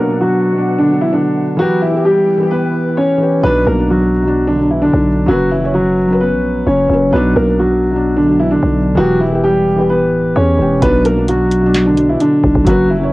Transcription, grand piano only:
Already playing: A#4
0.00 A#3
0.21 F#3 F#4
0.78 D3 D4
1.01 E3 E4
1.13 D3 D4
1.59 F#3 F#4
1.82 E3 E4
2.05 G3 G4
2.51 B3 B4
2.97 C#4 C#5
3.44 B3 B4
3.67 A#3 A#4
3.90 F#3 F#4
4.47 D3 D4
4.71 E3 E4
4.82 D3 D4
5.28 F#3 F#4
5.51 E3 E4
5.74 F#3 F#4
6.21 B3 B4
6.67 C#4 C#5
7.13 B3 B4
7.36 A#3 A#4
7.59 F#3 F#4
8.17 D3 D4
8.40 E3 E4
8.51 D3 D4
8.97 F#3 F#4
9.20 E3 E4
9.44 G3 G4
9.90 B3 B4
10.36 C#4 C#5
10.82 B3 B4
11.05 A#3 A#4
11.29 F#3 F#4
11.86 D3 D4
12.09 E3 E4
12.21 D3 D4
12.67 F#3 F#4
12.90 E3 E4

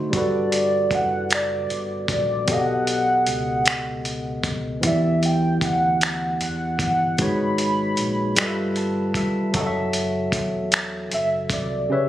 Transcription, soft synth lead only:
0.16 D5
0.95 F#5
1.34 D5
2.12 D5
2.51 F#5
4.87 E5
5.25 G5
5.65 F#5
6.43 F#5
6.81 F#5
7.22 B5
11.14 E5
11.53 D5
11.93 C#5

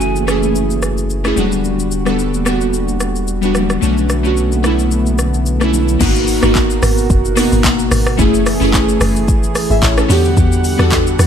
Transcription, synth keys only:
Already playing: A3 C#4 E4 F#4 G#4
0.27 A3 C#4 E4 G#4
1.24 A3 C#4 E4 G#4
1.36 G3 B3 D4 F#4
2.05 G3 B3 D4 A4
2.45 G3 B3 D4 F#4
3.41 G3 B3 D4 F#4
3.81 A3 C#4 D4 F#4
4.23 A3 C#4 D4 F#4
4.63 A3 C#4 D4 E4
5.60 A3 C#4 D4 E4
5.99 A#3 B3 D#4 F#4
6.41 A#3 B3 D#4 F#4
7.35 A#3 B3 D#4 F#4
8.17 A3 C#4 E4 G#4
8.60 A3 C#4 E4 G#4
9.71 G#4 E5
9.83 E4 C#5
9.98 C#4 A4
10.08 B3 D4 F#4 G4
10.78 B3 D4 F#4 A4

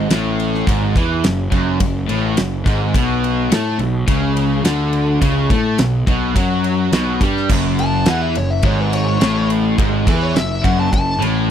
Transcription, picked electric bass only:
0.09 A1
0.68 G#1
0.96 E2
1.25 F#1
1.52 F#1
1.80 F#1
2.10 A1
2.39 F#1
2.66 G#1
2.95 B1
3.51 A2
3.79 B1
4.08 C#2
4.64 D2
5.22 C#2
5.51 A2
5.79 B1
6.07 B1
6.35 F#2
6.93 B1
7.21 G2
7.50 F#1
8.07 E2
8.36 F#1
8.63 G#1
9.22 A1
9.79 G#1
10.07 E2
10.37 F#1
10.64 F#1
10.93 F#1
11.21 A1

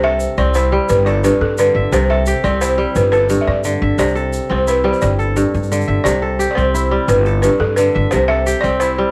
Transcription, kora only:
Already playing: C3 C4 E5
0.03 A4
0.38 C4
0.56 E4
0.72 G3
1.07 A4
1.24 G2
1.59 D3
1.75 E5
1.92 C3
2.10 A4
2.27 G4
2.44 C4
2.61 E4
2.78 G3
3.13 A4
3.30 G2
3.65 D3
3.82 E5
3.99 C3
4.15 A4
4.50 C4
4.67 E4
4.84 G3
5.19 A4
5.36 G2
5.72 D3
5.87 E5
6.05 C3
6.22 A4
6.39 G4
6.57 C4
6.74 E4
6.91 G3
7.26 A4
7.44 G2
7.78 D3
7.95 E5
8.12 C3
8.29 A4
8.46 G4
8.64 C4
8.81 E4
8.98 G3

